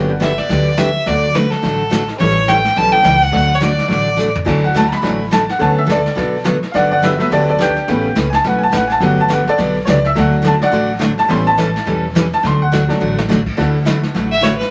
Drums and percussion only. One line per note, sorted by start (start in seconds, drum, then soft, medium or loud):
0.22 snare medium
0.22 hi-hat pedal soft
0.38 snare soft
0.50 brush sweep soft
0.50 snare soft
0.78 snare medium
0.78 hi-hat pedal medium
1.06 brush sweep soft
1.06 snare soft
1.35 snare medium
1.35 hi-hat pedal soft
1.51 snare soft
1.64 brush sweep soft
1.64 snare soft
1.92 snare medium
1.92 hi-hat pedal medium
2.08 snare soft
2.20 brush sweep soft
2.20 snare soft
2.48 snare medium
2.48 hi-hat pedal medium
2.65 snare soft
2.76 brush sweep soft
2.76 snare soft
3.04 snare medium
3.04 hi-hat pedal medium
3.21 snare soft
3.33 brush sweep soft
3.33 snare soft
3.61 snare medium
3.61 hi-hat pedal medium
3.78 snare soft
3.91 brush sweep soft
3.91 snare soft
4.19 hi-hat pedal medium
4.35 floor tom medium
4.47 brush sweep soft
4.47 kick medium
4.47 snare soft
4.47 crash medium
4.75 snare medium
4.75 hi-hat pedal medium
4.92 snare soft
5.04 brush sweep soft
5.04 snare soft
5.32 snare medium
5.32 hi-hat pedal medium
5.49 snare soft
5.61 brush sweep medium
5.61 snare soft
5.90 snare medium
5.90 hi-hat pedal medium
6.06 snare soft
6.17 brush sweep soft
6.17 snare soft
6.45 snare medium
6.45 hi-hat pedal medium
6.63 snare soft
6.75 brush sweep soft
6.75 snare soft
7.03 snare medium
7.03 hi-hat pedal medium
7.20 snare soft
7.32 brush sweep soft
7.32 snare soft
7.60 snare medium
7.60 hi-hat pedal medium
7.76 snare soft
7.88 brush sweep soft
7.88 snare soft
8.16 snare medium
8.16 hi-hat pedal soft
8.33 snare soft
8.44 brush sweep soft
8.44 snare soft
8.73 snare medium
8.73 hi-hat pedal medium
8.90 snare soft
9.01 brush sweep soft
9.01 snare soft
9.30 snare medium
9.30 hi-hat pedal medium
9.47 snare soft
9.58 brush sweep soft
9.58 snare soft
9.87 snare medium
9.87 hi-hat pedal medium
10.04 snare soft
10.16 brush sweep soft
10.16 snare soft
10.44 snare medium
10.44 hi-hat pedal medium
10.62 snare soft
10.73 brush sweep soft
10.73 snare soft
11.01 snare medium
11.01 hi-hat pedal medium
11.18 snare soft
11.30 brush sweep soft
11.30 snare soft
11.58 snare medium
11.58 hi-hat pedal medium
11.76 snare soft
11.87 brush sweep medium
11.87 snare soft
12.16 snare medium
12.16 hi-hat pedal medium
12.33 snare soft
12.45 brush sweep soft
12.45 snare soft
12.73 snare medium
12.73 hi-hat pedal medium
12.90 snare soft
13.18 snare medium
13.31 snare medium
13.31 hi-hat pedal medium
13.46 kick medium
13.46 crash medium
13.59 brush sweep soft
13.59 snare soft
13.86 snare medium
13.86 hi-hat pedal medium
14.03 snare soft
14.16 brush sweep soft
14.16 snare soft
14.44 snare medium
14.44 hi-hat pedal medium
14.61 snare soft